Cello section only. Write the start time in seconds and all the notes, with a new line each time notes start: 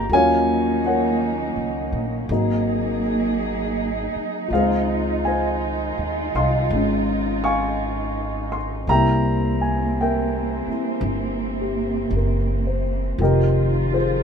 0.12 D#3 A#3 C#4 D#4
2.27 F#3 A#3 D#4 G#4
4.50 D#3 F4
8.90 E3 A#3 C4
13.22 D#3 F3 F4